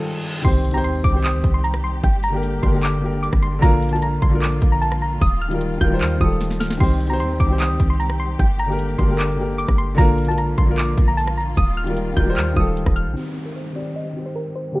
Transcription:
Already playing: D#3 G3 F4 A4 A#4 C5, reverse cymbal
0.42 C2 D#3 G3 C4 G4 C6, kick, closed hi-hat, crash, impact
0.48 C5
0.64 closed hi-hat
0.71 D#3 C4 A#5, closed hi-hat
0.75 G4 C5, closed hi-hat
0.84 D#2 C6, closed hi-hat
1.04 C2 D6, kick, closed hi-hat
1.11 D#3 C4 G4
1.17 C5
1.24 D#6, clap, closed hi-hat
1.34 D2
1.44 C2, kick, closed hi-hat
1.54 C6
1.64 A#5, closed hi-hat
1.74 cross-stick
1.84 C6
2.04 G1 D3 A#3 G5, kick, closed hi-hat
2.23 A#5, closed hi-hat
2.30 D3 A#3 G4
2.36 A#4
2.43 closed hi-hat
2.61 G1 D3 A#3 G4 C6, kick, closed hi-hat
2.67 D3 A#4
2.72 A#3 G4 A#4
2.83 D6, clap, closed hi-hat
3.00 D3 A#3 G4
3.06 A#4
3.23 D6, closed hi-hat
3.33 G1, kick, cross-stick
3.42 C6, closed hi-hat
3.59 A#1 D3 F3 A#3 F4 A#5, kick, closed hi-hat
3.65 A#4
3.82 closed hi-hat
3.89 D3 A#3 A5, closed hi-hat
3.94 F4 A#4, closed hi-hat
4.02 A#5, closed hi-hat
4.22 A#1 C6, kick, closed hi-hat
4.29 D3 A#3 F4
4.35 A#4
4.42 D6, clap, closed hi-hat
4.62 A#1, kick, closed hi-hat
4.72 A#5
4.82 A5, closed hi-hat
4.92 cross-stick
5.02 A#5
5.21 D#1 D#3 G3 D#6, kick, closed hi-hat
5.41 F6, closed hi-hat
5.48 D#3 G3 F4, closed hi-hat
5.54 A#4
5.61 closed hi-hat
5.78 D#1 D#3 G3 F4 G6, kick, closed hi-hat
5.84 A#4
5.88 D#3 G3 F4
5.94 C5
6.01 D#2 F6, clap, closed hi-hat
6.18 D#1 D#3 G3 F4 D#6, kick
6.24 A4
6.41 snare, closed hi-hat
6.51 snare
6.60 D1 F6, snare, closed hi-hat
6.71 snare
6.77 C2 D#3 C4 G4 C6, kick, crash
6.83 C5
7.00 closed hi-hat
7.07 D#3 C4 A#5, closed hi-hat
7.11 G4 C5, closed hi-hat
7.20 D#2 C6, closed hi-hat
7.40 C2 D6, kick, closed hi-hat
7.47 D#3 C4 G4
7.52 C5
7.60 D#6, clap, closed hi-hat
7.70 D2
7.80 C2, kick, closed hi-hat
7.90 C6
8.00 A#5, closed hi-hat
8.10 cross-stick
8.20 C6
8.39 G1 D3 A#3 G5, kick, closed hi-hat
8.59 A#5, closed hi-hat
8.66 D3 A#3 G4
8.72 A#4
8.79 closed hi-hat
8.97 G1 D3 A#3 G4 C6, kick, closed hi-hat
9.02 D3 A#4
9.08 A#3 G4 A#4
9.19 D6, clap, closed hi-hat
9.36 D3 A#3 G4
9.42 A#4
9.58 D6, closed hi-hat
9.68 G1, kick, cross-stick
9.78 C6, closed hi-hat
9.95 A#1 D3 F3 A#3 F4 A#5, kick, closed hi-hat
10.00 A#4
10.18 closed hi-hat
10.25 D3 A#3 A5, closed hi-hat
10.29 F4 A#4, closed hi-hat
10.38 A#5, closed hi-hat
10.58 A#1 C6, kick, closed hi-hat
10.65 D3 A#3 F4
10.71 A#4
10.78 D6, clap, closed hi-hat
10.98 A#1, kick, closed hi-hat
11.08 A#5
11.17 A5, closed hi-hat
11.27 cross-stick
11.38 A#5
11.57 D#1 D#3 G3 D#6, kick, closed hi-hat
11.77 F6, closed hi-hat
11.84 D#3 G3 F4, closed hi-hat
11.90 A#4
11.97 closed hi-hat
12.13 D#1 D#3 G3 F4 G6, kick, closed hi-hat
12.19 A#4
12.24 D#3 G3 F4
12.30 C5
12.37 D#2 F6, clap, closed hi-hat
12.54 D#1 D#3 G3 F4 D#6, kick
12.59 A4
12.76 D1, closed hi-hat
12.86 D#1, kick, cross-stick
12.96 F6, closed hi-hat
13.06 A#1
13.14 D#3 G3 C4 G4 C5, downlifter
13.19 C5
13.46 A#4
13.56 C5
13.72 D#3 C4 G4 D5
13.78 C5
13.96 D#5
14.13 D#3 C4 G4
14.19 C5
14.26 C5
14.35 A#4
14.55 C5
14.72 D3 A#3 G4

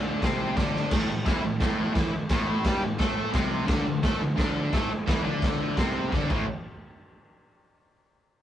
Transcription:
Already playing: D2 D3 D4
0.22 C2 C3 C4, kick, snare, crash
0.56 D2 D3 D4, kick, snare, crash
0.76 snare
0.91 A1 A2 A3, kick, snare, crash
1.10 A1 A2
1.25 E2 E3 E4, kick, snare, crash
1.43 A1 A2
1.60 A1 A2 A3, kick, snare, crash
1.93 E2 E3 E4, kick, snare, crash
2.13 muted distorted electric guitar stroke, muted picked electric bass stroke
2.29 A1 A2 A3, kick, snare, crash
2.64 G2 G3 G4, kick, snare, crash
2.82 A1 A2
2.99 A2 A3 A4, kick, snare, crash
3.32 C2 C3 C4, kick, snare, crash
3.66 D2 D3 D4, kick, snare, crash
3.86 D2 D3
4.03 A2 A3 A4, kick, snare, crash
4.20 D2 D3
4.36 D2 D3 D4, kick, snare, crash
4.73 A2 A3 A4, kick, snare, crash
4.90 muted distorted electric guitar stroke, muted picked electric bass stroke
5.07 E2 E3 E4, kick, snare, crash
5.23 D2 D3 D4
5.42 kick, snare, crash
5.77 C2 C3 C4, kick, snare, crash
6.11 D2 D3 D4, kick, snare
6.29 A1 A2 E3 A3, kick, crash

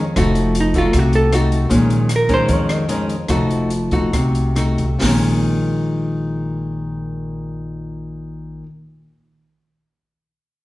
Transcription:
Already playing: F2
0.16 F1 F3 A3 D#4 F#4, kick, cross-stick, closed hi-hat
0.35 closed hi-hat
0.55 closed hi-hat
0.60 D#4
0.74 A3 D#4 F#4, kick, closed hi-hat
0.78 F4
0.93 C2 C3, kick, cross-stick, closed hi-hat
0.99 F#4
1.13 A4, closed hi-hat
1.33 A3 D#4 F#4, cross-stick, closed hi-hat
1.52 closed hi-hat
1.69 A#1 A#2 D#3 G#3 C#4, kick, closed hi-hat
1.90 closed hi-hat
2.09 cross-stick, closed hi-hat
2.16 A#4
2.29 D#3 G#3 C#4, kick, closed hi-hat
2.34 C5
2.48 F2, kick, closed hi-hat
2.54 C#5
2.69 D#5, cross-stick, closed hi-hat
2.89 D#3 G#3 C#4, closed hi-hat
3.09 closed hi-hat
3.28 F1 F3 A3 D#4 F#4, kick, cross-stick, closed hi-hat
3.51 closed hi-hat
3.70 closed hi-hat
3.91 A3 D#4 F#4, kick, closed hi-hat
4.13 C2 C3, kick, cross-stick, closed hi-hat
4.35 closed hi-hat
4.55 A3 D#4 F#4, cross-stick, closed hi-hat
4.78 kick, closed hi-hat
4.99 A#1 A#2 D#3, snare, open hi-hat
5.04 G#3 C#4

